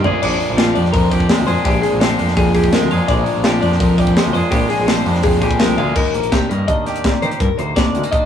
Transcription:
0.03 A#1 A#2 F3 A#3 C4 F4 G#4 D5, floor tom
0.21 A#1 A#2 F3 A#3 C4 D4 F4 D5, crash
0.39 A#3 C4 F4, open hi-hat
0.50 A#1
0.56 F3 A#3 C4 F4 G4, snare, open hi-hat
0.75 F2 A#3 C4 D4 F4 D5, open hi-hat
0.85 snare
0.93 F2 A#2 F3 A#3 C4 F4 A#4, kick, open hi-hat
1.10 F2 G4 D5, kick, open hi-hat
1.20 kick
1.28 F3 G#3 A#3 C4 F4, snare, open hi-hat
1.39 D2
1.46 F2 A#2 A#3 C4 F4 G#4 C5, open hi-hat
1.64 A#1 A#2 F3 A#3 C4 D4 F4 G4, kick, open hi-hat
1.82 A#3 C4 F4 G#4, open hi-hat
1.93 A#1
2.00 F3 A#3 C4 F4 G4 C5, snare, open hi-hat
2.18 F2 A#3 C4 D4 F4, open hi-hat
2.28 snare
2.36 F2 A#2 F3 A#3 C4 F4 G#4, kick, open hi-hat
2.54 F2 G4 G#4, kick, open hi-hat
2.64 kick
2.72 F3 G#3 A#3 C4 F4 A#4, snare, open hi-hat
2.82 D2
2.90 F2 A#2 A#3 C4 F4 G#4 F5, open hi-hat
3.08 A#1 A#2 F3 A#3 C4 D4 F4 D5, kick, open hi-hat
3.26 A#3 C4 F4, open hi-hat
3.36 A#1
3.44 F3 A#3 C4 F4 G4, snare, open hi-hat
3.62 F2 A#3 C4 D4 F4 D5, open hi-hat
3.72 snare
3.79 F2 A#2 F3 A#3 C4 F4 A#4, kick, open hi-hat
3.98 F2 G4 D5, kick, open hi-hat
4.07 kick
4.15 F3 G#3 A#3 C4 F4, snare, open hi-hat
4.26 D2
4.32 F2 A#2 A#3 C4 F4 G#4 C5, open hi-hat
4.51 A#1 A#2 F3 A#3 C4 D4 F4 G4, kick, open hi-hat
4.68 A#3 C4 F4 G#4, open hi-hat
4.79 A#1
4.87 F3 A#3 C4 F4 G4 C5, snare, open hi-hat
5.05 F2 A#3 C4 D4 F4, open hi-hat
5.15 snare
5.23 F2 A#2 F3 A#3 C4 F4 G#4, kick, open hi-hat
5.41 A#1 F2 G4 G#4, kick, open hi-hat
5.51 kick
5.59 C2 F3 G#3 A#3 C4 F4 A#4, snare, open hi-hat
5.77 D2 A#2 A#3 C4 F4 G#4 F5, high tom
5.96 D#2 A#4, kick, crash
6.14 A#1 A#3, closed hi-hat
6.23 closed hi-hat
6.32 C3 D4 G4, kick, snare, closed hi-hat
6.49 G2 D#3 A#3 A#4, closed hi-hat
6.68 D#2 D4 D#5, kick, closed hi-hat
6.86 G4 D5, snare, closed hi-hat
6.96 closed hi-hat
7.04 A#2 A#3, kick, snare, closed hi-hat
7.22 D#3 G4 C5, closed hi-hat
7.31 closed hi-hat
7.40 D#2 G2 A#4, kick, closed hi-hat
7.58 D2 A#3 C5, closed hi-hat
7.76 D#2 D4 D5, kick, snare, closed hi-hat
7.93 D2 D#3 G#3, closed hi-hat
8.04 A#3, closed hi-hat
8.12 D#2 D4 D#5, kick, closed hi-hat

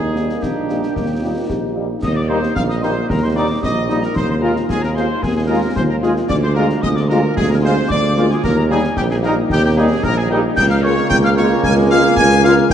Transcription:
Already playing: D#2 A#3 D#4 G#4
0.15 G3 A#3 D#4, snare
0.29 snare
0.41 A#1 D4 G4, concert bass drum, snare
0.69 G3 A#3 D#4, snare
0.83 snare
0.95 D#2 D#4, concert bass drum, snare
1.22 G3 A#3 D#4 F4
1.49 A#1 G4, concert bass drum, snare
1.76 G3 A#3 D#4
2.02 D#2 D#5 D#6, concert bass drum, snare, crash
2.15 D5 D6
2.28 G3 A#3 D#4 C5 C6
2.43 snare
2.56 A#1 F5 F6, concert bass drum, snare
2.69 D#5 D#6, snare
2.82 G3 A#3 D#4 C5 C6, snare
3.09 D#2 A#4 A#5, concert bass drum, snare
3.23 C5 C6
3.35 G3 A#3 D#4 D5 D6
3.62 A#1 D#5 D#6, concert bass drum, snare
3.88 G3 A#3 D#4, snare
4.01 A#4 A#5, snare
4.14 D#2 C5 C6, concert bass drum, snare
4.29 C5 C6
4.41 G#3 F4 A#4 A#5
4.56 snare
4.69 D#2 G#4 G#5, concert bass drum, snare
4.82 A#4 A#5, snare
4.95 G#3 F4 C5 C6, snare
5.22 D#2 G#4 G#5, concert bass drum, snare
5.36 G#4 G#5
5.48 G#3 F4 A#4 A#5
5.75 D#2 C5 C6, concert bass drum, snare
5.89 A#4 A#5
6.02 G#3 F4 G#4 G#5, snare
6.16 snare
6.29 D2 D5 D6, concert bass drum, snare, crash
6.43 C5 C6
6.55 G#3 A#3 F4 A#4 A#5
6.69 snare
6.82 D2 D#5 D#6, concert bass drum, snare
6.96 D5 D6, snare
7.08 G#3 A#3 F4 A#4 A#5, snare
7.35 D2 G#4 G#5, concert bass drum, snare
7.49 A#4 A#5
7.61 G#3 A#3 F4 C5 C6
7.88 D2 D5 D6, concert bass drum, snare
8.17 G#3 A#3 F4, snare
8.29 G#4 G#5, snare
8.44 D#2 A#4 A#5, concert bass drum, snare
8.56 A#4 A#5
8.69 G3 A#3 D#4 G#4 G#5
8.83 snare
8.96 A#1 G4 G5, concert bass drum, snare
9.11 G#4 G#5, snare
9.23 G3 A#3 D#4 A#4 A#5, snare
9.50 D#2 G4 G5, concert bass drum, snare
9.65 G4 G5
9.77 G3 A#3 D#4 G#4 G#5
10.03 A#1 A#4 A#5, concert bass drum, snare
10.17 G#4 G#5
10.30 G3 A#3 D#4 G4 G5
10.56 C#2 G#3 A#3 G5 G6, concert bass drum, snare, crash
10.70 F5 F6
10.83 G#3 A#3 F4 C#5 C#6
10.97 snare
11.10 C#2 G5 G6, concert bass drum, snare
11.24 F5 F6, snare
11.37 G#3 A#3 F4 C#5 C#6, snare
11.63 C#2 G#5 G#6, concert bass drum, snare
11.91 G#3 A#3 F4 F5 F6
12.17 C#2 G#5 G#6, concert bass drum, snare
12.44 G#3 A#3 F4 F5 F6, snare
12.57 snare
12.68 D#2 G3 A#3 G5, concert bass drum, snare

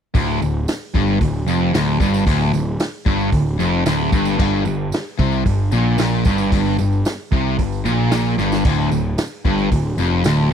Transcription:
0.15 D1 D2, kick, open hi-hat
0.42 D1 D2, tambourine
0.68 snare, open hi-hat, tambourine
0.94 G1 G2, kick, tambourine
1.08 tambourine
1.21 D1 D2, kick, open hi-hat, tambourine
1.47 F1 F2, tambourine
1.73 D1 D2, snare, open hi-hat, tambourine
2.00 G1 G2, kick, tambourine
2.14 snare, tambourine
2.26 D1 D2, kick, open hi-hat
2.53 D1 D2, tambourine
2.80 snare, open hi-hat, tambourine
3.06 G1 G2, kick, tambourine
3.21 tambourine
3.32 D1 D2, kick, open hi-hat, tambourine
3.59 F1 F2, tambourine
3.86 D1 D2, snare, open hi-hat, tambourine
4.12 G1 G2, kick, tambourine
4.25 snare, tambourine
4.38 G1 G2, kick, crash
4.65 G1 G2, tambourine
4.92 snare, open hi-hat, tambourine
5.19 C2 C3, kick, tambourine
5.32 tambourine
5.46 G1 G2, kick, open hi-hat, tambourine
5.72 A#1 A#2, tambourine
5.98 A#1 A#2, snare, open hi-hat, tambourine
6.25 G1 G2, kick, tambourine
6.38 snare, tambourine
6.52 G1 G2, kick, open hi-hat, tambourine
6.79 G1 G2, tambourine
6.93 tambourine
7.05 snare, open hi-hat, tambourine
7.32 C2 C3, kick, tambourine
7.59 G1 G2, kick, open hi-hat
7.72 tambourine
7.85 A#1 A#2, tambourine
8.11 A#1 A#2, snare, open hi-hat, tambourine
8.38 G1 G2, snare, tambourine
8.52 snare, tambourine
8.65 D1 D2, kick, open hi-hat, crash
8.92 D1 D2, tambourine
9.18 snare, open hi-hat, tambourine
9.45 G1 G2, kick, tambourine
9.59 tambourine
9.71 D1 D2, kick, open hi-hat, tambourine
9.98 F1 F2, tambourine
10.24 D1 D2, snare, open hi-hat, tambourine

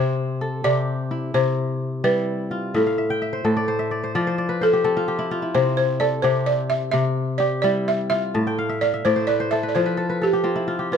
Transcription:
Already playing: C3 C4 C5
0.41 A4
0.64 C3 G4 D5
1.11 E4
1.34 C3 C5
2.04 G3 E4 B4
2.51 F4
2.74 A2 A4 E5
2.87 F5
2.98 E5
3.10 G5
3.22 E5
3.33 C5
3.45 A2 A4
3.57 D5
3.68 C5
3.79 E5
3.91 D5
4.04 C5
4.15 F3 D5
4.27 C5
4.38 D5
4.49 B4
4.61 A4 C5
4.73 G4
4.84 C4 A4
4.97 F4
5.08 G4
5.19 E4
5.31 F4
5.42 E4
5.55 C3 C4 C5
5.77 C5
6.00 A4 D5
6.22 C3 G4 C5
6.46 D5
6.70 E5
6.91 C3 E5
7.38 G4 D5
7.62 G3 E4 D5
7.88 E5
8.10 F4 E5
8.34 A2 A5
8.47 G5
8.59 F5
8.69 E5
8.81 D5 F5
8.94 E5
9.05 A2 C5 D5
9.16 C5
9.27 B4 D5
9.40 C5
9.51 A4 E5
9.63 B4
9.69 D5
9.75 F3 C5
9.86 B4
9.97 A4
10.10 B4
10.22 G4 A4
10.33 G4
10.44 C4 F4
10.56 E4
10.68 F4
10.79 G4
10.92 F4 B4

